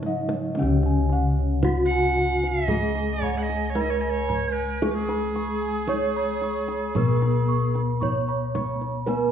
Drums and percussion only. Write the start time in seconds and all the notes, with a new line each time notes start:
0.03 kendang high
0.29 kendang high
0.55 kendang high
0.83 kendang slap
1.09 kendang slap
1.63 kendang slap, kendang high, kendang low
2.18 kendang slap
2.43 kendang slap
2.68 kendang high, kendang low
2.95 kendang slap
3.22 kendang low
3.49 kendang slap
3.75 kendang high
4.30 kendang slap, kendang low
4.82 kendang high
5.09 kendang slap
5.36 kendang slap
5.88 kendang slap, kendang high
6.42 kendang slap
6.68 kendang slap
6.95 kendang high, kendang low
7.22 kendang slap
7.75 kendang slap
8.02 kendang low
8.55 kendang slap, kendang high, kendang low
8.81 kendang slap
9.07 kendang high